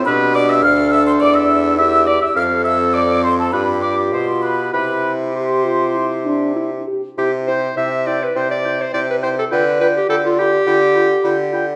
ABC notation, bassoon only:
X:1
M:4/4
L:1/8
Q:1/4=103
K:C
V:1 name="Bassoon" clef=bass
B,,2 D,,2 E,,4 | F,,4 G,,2 B,,2 | C,6- C, z | C,2 C,2 C,2 C,2 |
D,2 D,2 D,2 D,2 |]